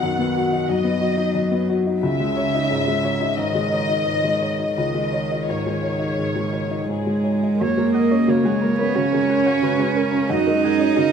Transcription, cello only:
0, 0, Header, 1, 2, 480
1, 0, Start_track
1, 0, Tempo, 670391
1, 1448, Time_signature, 4, 2, 24, 8
1, 2415, Tempo, 705882
1, 5295, Tempo, 671141
1, 7808, End_track
2, 0, Start_track
2, 0, Title_t, "Cello"
2, 0, Program_c, 0, 42
2, 26, Note_on_c, 0, 51, 46
2, 495, Note_on_c, 0, 54, 51
2, 506, Note_off_c, 0, 51, 0
2, 727, Note_off_c, 0, 54, 0
2, 731, Note_on_c, 0, 54, 50
2, 1452, Note_on_c, 0, 49, 54
2, 1463, Note_off_c, 0, 54, 0
2, 2415, Note_on_c, 0, 51, 42
2, 2425, Note_off_c, 0, 49, 0
2, 3358, Note_off_c, 0, 51, 0
2, 3363, Note_on_c, 0, 51, 45
2, 4785, Note_off_c, 0, 51, 0
2, 4812, Note_on_c, 0, 56, 51
2, 5305, Note_on_c, 0, 58, 69
2, 5316, Note_off_c, 0, 56, 0
2, 5902, Note_on_c, 0, 56, 55
2, 5913, Note_off_c, 0, 58, 0
2, 6023, Note_on_c, 0, 58, 52
2, 6034, Note_off_c, 0, 56, 0
2, 6138, Note_off_c, 0, 58, 0
2, 6142, Note_on_c, 0, 59, 57
2, 6261, Note_on_c, 0, 61, 74
2, 6271, Note_off_c, 0, 59, 0
2, 7222, Note_on_c, 0, 63, 82
2, 7232, Note_off_c, 0, 61, 0
2, 7808, Note_off_c, 0, 63, 0
2, 7808, End_track
0, 0, End_of_file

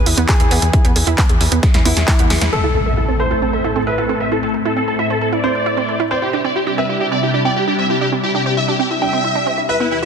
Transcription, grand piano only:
0, 0, Header, 1, 2, 480
1, 0, Start_track
1, 0, Key_signature, 0, "minor"
1, 0, Tempo, 447761
1, 789, Time_signature, 4, 2, 24, 8
1, 10775, End_track
2, 0, Start_track
2, 0, Title_t, "Grand piano"
2, 0, Program_c, 0, 0
2, 0, Note_on_c, 0, 71, 93
2, 212, Note_off_c, 0, 71, 0
2, 309, Note_on_c, 0, 68, 89
2, 933, Note_off_c, 0, 68, 0
2, 1987, Note_on_c, 0, 64, 93
2, 2612, Note_off_c, 0, 64, 0
2, 2708, Note_on_c, 0, 69, 88
2, 3332, Note_off_c, 0, 69, 0
2, 3429, Note_on_c, 0, 72, 77
2, 4053, Note_off_c, 0, 72, 0
2, 4148, Note_on_c, 0, 71, 80
2, 4772, Note_off_c, 0, 71, 0
2, 5828, Note_on_c, 0, 72, 85
2, 6452, Note_off_c, 0, 72, 0
2, 6549, Note_on_c, 0, 72, 91
2, 7173, Note_off_c, 0, 72, 0
2, 7269, Note_on_c, 0, 76, 84
2, 7893, Note_off_c, 0, 76, 0
2, 7988, Note_on_c, 0, 79, 82
2, 8612, Note_off_c, 0, 79, 0
2, 9668, Note_on_c, 0, 79, 81
2, 10292, Note_off_c, 0, 79, 0
2, 10387, Note_on_c, 0, 71, 88
2, 10775, Note_off_c, 0, 71, 0
2, 10775, End_track
0, 0, End_of_file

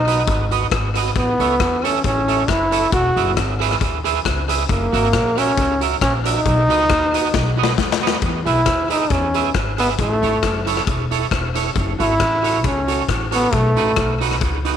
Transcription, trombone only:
0, 0, Header, 1, 2, 480
1, 0, Start_track
1, 0, Key_signature, 4, "major"
1, 0, Tempo, 441826
1, 1262, Time_signature, 4, 2, 24, 8
1, 16044, End_track
2, 0, Start_track
2, 0, Title_t, "Trombone"
2, 0, Program_c, 0, 57
2, 0, Note_on_c, 0, 63, 105
2, 791, Note_off_c, 0, 63, 0
2, 1278, Note_on_c, 0, 59, 94
2, 2011, Note_on_c, 0, 61, 83
2, 2028, Note_off_c, 0, 59, 0
2, 2225, Note_off_c, 0, 61, 0
2, 2236, Note_on_c, 0, 61, 96
2, 2712, Note_on_c, 0, 64, 104
2, 2728, Note_off_c, 0, 61, 0
2, 3179, Note_off_c, 0, 64, 0
2, 3186, Note_on_c, 0, 66, 101
2, 3629, Note_off_c, 0, 66, 0
2, 5107, Note_on_c, 0, 58, 99
2, 5848, Note_on_c, 0, 61, 120
2, 5865, Note_off_c, 0, 58, 0
2, 6322, Note_off_c, 0, 61, 0
2, 6538, Note_on_c, 0, 61, 102
2, 6655, Note_off_c, 0, 61, 0
2, 6793, Note_on_c, 0, 63, 123
2, 8408, Note_off_c, 0, 63, 0
2, 9198, Note_on_c, 0, 64, 108
2, 9643, Note_off_c, 0, 64, 0
2, 9682, Note_on_c, 0, 63, 94
2, 9901, Note_on_c, 0, 61, 84
2, 9917, Note_off_c, 0, 63, 0
2, 10377, Note_off_c, 0, 61, 0
2, 10644, Note_on_c, 0, 59, 102
2, 10741, Note_off_c, 0, 59, 0
2, 10866, Note_on_c, 0, 57, 103
2, 11559, Note_off_c, 0, 57, 0
2, 13044, Note_on_c, 0, 64, 113
2, 13697, Note_off_c, 0, 64, 0
2, 13753, Note_on_c, 0, 61, 90
2, 14193, Note_off_c, 0, 61, 0
2, 14485, Note_on_c, 0, 59, 107
2, 14704, Note_on_c, 0, 57, 98
2, 14721, Note_off_c, 0, 59, 0
2, 15445, Note_off_c, 0, 57, 0
2, 16044, End_track
0, 0, End_of_file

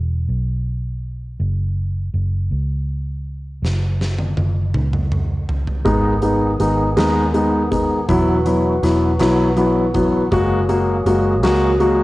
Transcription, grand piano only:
0, 0, Header, 1, 2, 480
1, 0, Start_track
1, 0, Tempo, 742574
1, 909, Time_signature, 6, 3, 24, 8
1, 7779, End_track
2, 0, Start_track
2, 0, Title_t, "Grand piano"
2, 0, Program_c, 0, 0
2, 3780, Note_on_c, 0, 56, 75
2, 3783, Note_on_c, 0, 59, 64
2, 3783, Note_on_c, 0, 63, 74
2, 3954, Note_off_c, 0, 56, 0
2, 3955, Note_off_c, 0, 59, 0
2, 3955, Note_off_c, 0, 63, 0
2, 4022, Note_on_c, 0, 56, 55
2, 4023, Note_on_c, 0, 59, 53
2, 4026, Note_on_c, 0, 63, 59
2, 4195, Note_off_c, 0, 56, 0
2, 4195, Note_off_c, 0, 59, 0
2, 4196, Note_off_c, 0, 63, 0
2, 4264, Note_on_c, 0, 56, 54
2, 4268, Note_on_c, 0, 59, 51
2, 4270, Note_on_c, 0, 63, 64
2, 4436, Note_off_c, 0, 56, 0
2, 4437, Note_off_c, 0, 59, 0
2, 4438, Note_off_c, 0, 63, 0
2, 4503, Note_on_c, 0, 56, 81
2, 4504, Note_on_c, 0, 59, 64
2, 4507, Note_on_c, 0, 63, 78
2, 4675, Note_off_c, 0, 56, 0
2, 4675, Note_off_c, 0, 59, 0
2, 4677, Note_off_c, 0, 63, 0
2, 4743, Note_on_c, 0, 56, 65
2, 4747, Note_on_c, 0, 63, 68
2, 4748, Note_on_c, 0, 59, 61
2, 4915, Note_off_c, 0, 56, 0
2, 4917, Note_off_c, 0, 59, 0
2, 4917, Note_off_c, 0, 63, 0
2, 4984, Note_on_c, 0, 56, 50
2, 4984, Note_on_c, 0, 59, 47
2, 4987, Note_on_c, 0, 63, 57
2, 5156, Note_off_c, 0, 56, 0
2, 5156, Note_off_c, 0, 59, 0
2, 5157, Note_off_c, 0, 63, 0
2, 5225, Note_on_c, 0, 54, 77
2, 5226, Note_on_c, 0, 59, 63
2, 5228, Note_on_c, 0, 64, 81
2, 5396, Note_off_c, 0, 54, 0
2, 5396, Note_off_c, 0, 59, 0
2, 5398, Note_off_c, 0, 64, 0
2, 5466, Note_on_c, 0, 54, 62
2, 5469, Note_on_c, 0, 59, 52
2, 5470, Note_on_c, 0, 64, 64
2, 5637, Note_off_c, 0, 54, 0
2, 5638, Note_off_c, 0, 59, 0
2, 5638, Note_off_c, 0, 64, 0
2, 5705, Note_on_c, 0, 54, 57
2, 5708, Note_on_c, 0, 59, 56
2, 5709, Note_on_c, 0, 64, 67
2, 5876, Note_off_c, 0, 54, 0
2, 5877, Note_off_c, 0, 59, 0
2, 5878, Note_off_c, 0, 64, 0
2, 5943, Note_on_c, 0, 54, 80
2, 5945, Note_on_c, 0, 59, 65
2, 5948, Note_on_c, 0, 64, 85
2, 6115, Note_off_c, 0, 54, 0
2, 6116, Note_off_c, 0, 59, 0
2, 6118, Note_off_c, 0, 64, 0
2, 6181, Note_on_c, 0, 54, 66
2, 6187, Note_on_c, 0, 59, 62
2, 6187, Note_on_c, 0, 64, 73
2, 6354, Note_off_c, 0, 54, 0
2, 6357, Note_off_c, 0, 59, 0
2, 6357, Note_off_c, 0, 64, 0
2, 6425, Note_on_c, 0, 54, 61
2, 6427, Note_on_c, 0, 59, 57
2, 6427, Note_on_c, 0, 64, 59
2, 6596, Note_off_c, 0, 54, 0
2, 6597, Note_off_c, 0, 59, 0
2, 6597, Note_off_c, 0, 64, 0
2, 6669, Note_on_c, 0, 56, 80
2, 6672, Note_on_c, 0, 58, 69
2, 6673, Note_on_c, 0, 66, 90
2, 6838, Note_off_c, 0, 56, 0
2, 6839, Note_off_c, 0, 58, 0
2, 6839, Note_off_c, 0, 66, 0
2, 6907, Note_on_c, 0, 56, 60
2, 6909, Note_on_c, 0, 58, 64
2, 6911, Note_on_c, 0, 66, 70
2, 7077, Note_off_c, 0, 56, 0
2, 7078, Note_off_c, 0, 58, 0
2, 7079, Note_off_c, 0, 66, 0
2, 7151, Note_on_c, 0, 56, 67
2, 7151, Note_on_c, 0, 66, 72
2, 7152, Note_on_c, 0, 58, 59
2, 7318, Note_off_c, 0, 56, 0
2, 7318, Note_off_c, 0, 66, 0
2, 7319, Note_off_c, 0, 58, 0
2, 7388, Note_on_c, 0, 56, 73
2, 7391, Note_on_c, 0, 58, 74
2, 7392, Note_on_c, 0, 66, 97
2, 7557, Note_off_c, 0, 56, 0
2, 7558, Note_off_c, 0, 58, 0
2, 7559, Note_off_c, 0, 66, 0
2, 7626, Note_on_c, 0, 56, 69
2, 7630, Note_on_c, 0, 58, 69
2, 7630, Note_on_c, 0, 66, 75
2, 7779, Note_off_c, 0, 56, 0
2, 7779, Note_off_c, 0, 58, 0
2, 7779, Note_off_c, 0, 66, 0
2, 7779, End_track
0, 0, End_of_file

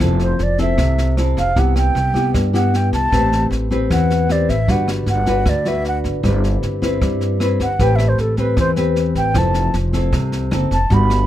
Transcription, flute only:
0, 0, Header, 1, 2, 480
1, 0, Start_track
1, 0, Tempo, 389105
1, 14, Time_signature, 4, 2, 24, 8
1, 13899, End_track
2, 0, Start_track
2, 0, Title_t, "Flute"
2, 0, Program_c, 0, 73
2, 281, Note_on_c, 0, 72, 74
2, 530, Note_on_c, 0, 74, 73
2, 549, Note_off_c, 0, 72, 0
2, 752, Note_off_c, 0, 74, 0
2, 758, Note_on_c, 0, 76, 77
2, 1417, Note_off_c, 0, 76, 0
2, 1710, Note_on_c, 0, 77, 82
2, 1964, Note_on_c, 0, 78, 72
2, 1983, Note_off_c, 0, 77, 0
2, 2181, Note_off_c, 0, 78, 0
2, 2189, Note_on_c, 0, 79, 89
2, 2852, Note_off_c, 0, 79, 0
2, 3150, Note_on_c, 0, 78, 84
2, 3406, Note_on_c, 0, 79, 82
2, 3424, Note_off_c, 0, 78, 0
2, 3615, Note_off_c, 0, 79, 0
2, 3622, Note_on_c, 0, 81, 90
2, 4289, Note_off_c, 0, 81, 0
2, 4839, Note_on_c, 0, 78, 80
2, 5325, Note_on_c, 0, 74, 77
2, 5344, Note_off_c, 0, 78, 0
2, 5546, Note_on_c, 0, 76, 82
2, 5564, Note_off_c, 0, 74, 0
2, 5807, Note_on_c, 0, 78, 75
2, 5825, Note_off_c, 0, 76, 0
2, 6030, Note_off_c, 0, 78, 0
2, 6289, Note_on_c, 0, 78, 80
2, 6773, Note_on_c, 0, 74, 73
2, 6791, Note_off_c, 0, 78, 0
2, 7007, Note_on_c, 0, 76, 86
2, 7025, Note_off_c, 0, 74, 0
2, 7230, Note_off_c, 0, 76, 0
2, 7254, Note_on_c, 0, 78, 75
2, 7386, Note_off_c, 0, 78, 0
2, 9405, Note_on_c, 0, 78, 85
2, 9660, Note_on_c, 0, 79, 94
2, 9678, Note_off_c, 0, 78, 0
2, 9816, Note_on_c, 0, 76, 80
2, 9835, Note_off_c, 0, 79, 0
2, 9975, Note_on_c, 0, 72, 71
2, 9994, Note_off_c, 0, 76, 0
2, 10121, Note_on_c, 0, 69, 75
2, 10139, Note_off_c, 0, 72, 0
2, 10338, Note_off_c, 0, 69, 0
2, 10346, Note_on_c, 0, 71, 81
2, 10563, Note_off_c, 0, 71, 0
2, 10605, Note_on_c, 0, 72, 87
2, 10739, Note_off_c, 0, 72, 0
2, 11317, Note_on_c, 0, 79, 87
2, 11572, Note_on_c, 0, 81, 81
2, 11591, Note_off_c, 0, 79, 0
2, 12033, Note_off_c, 0, 81, 0
2, 13240, Note_on_c, 0, 81, 84
2, 13493, Note_on_c, 0, 83, 86
2, 13512, Note_off_c, 0, 81, 0
2, 13899, Note_off_c, 0, 83, 0
2, 13899, End_track
0, 0, End_of_file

